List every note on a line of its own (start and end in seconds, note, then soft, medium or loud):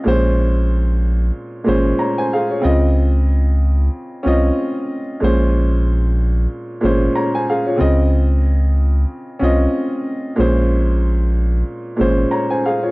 0.04 1.31 A#1 loud
0.04 1.02 A#2 medium
0.04 1.02 G#3 medium
0.04 1.03 C#4 medium
0.08 1.04 C5 loud
1.64 1.93 G#1 medium
1.64 2.40 A#2 medium
1.64 2.41 G#3 medium
1.64 2.41 C#4 medium
1.68 2.00 C5 medium
1.99 2.17 C#5 medium
1.99 2.17 A#5 medium
2.18 2.31 C5 medium
2.18 2.31 G#5 medium
2.33 2.51 G#4 medium
2.33 2.50 F5 medium
2.50 2.62 F4 soft
2.50 2.81 C#5 medium
2.60 3.59 C#3 medium
2.60 3.60 C4 medium
2.60 3.61 F4 medium
2.64 3.89 C#2 loud
2.64 3.61 D#5 medium
4.23 4.51 C2 medium
4.23 4.99 C4 medium
4.23 4.98 C#4 medium
4.23 5.00 F4 medium
4.27 5.01 D#5 medium
5.20 6.47 A#1 loud
5.20 6.18 A#2 medium
5.20 6.19 G#3 medium
5.20 6.19 C#4 medium
5.24 6.20 C5 loud
6.81 7.09 G#1 medium
6.81 7.56 A#2 medium
6.81 7.57 G#3 medium
6.81 7.58 C#4 medium
6.85 7.16 C5 medium
7.15 7.34 C#5 medium
7.15 7.33 A#5 medium
7.35 7.47 C5 medium
7.35 7.47 G#5 medium
7.49 7.67 G#4 medium
7.49 7.67 F5 medium
7.66 7.78 F4 medium
7.66 7.97 C#5 medium
7.76 8.75 C#3 medium
7.76 8.76 C4 medium
7.76 8.77 F4 medium
7.80 9.05 C#2 loud
7.80 8.77 D#5 medium
9.39 9.67 C2 loud
9.39 10.15 C4 medium
9.39 10.15 C#4 medium
9.39 10.16 F4 medium
9.44 10.17 D#5 medium
10.36 11.63 A#1 loud
10.36 11.34 A#2 medium
10.36 11.35 G#3 medium
10.36 11.36 C#4 medium
10.40 11.36 C5 medium
11.97 12.25 G#1 medium
11.97 12.72 A#2 medium
11.97 12.73 G#3 medium
11.97 12.74 C#4 medium
12.01 12.32 C5 medium
12.31 12.50 C#5 medium
12.31 12.49 A#5 medium
12.50 12.63 C5 medium
12.50 12.63 G#5 medium
12.66 12.83 G#4 medium
12.66 12.83 F5 medium
12.83 12.91 F4 medium
12.83 12.91 C#5 medium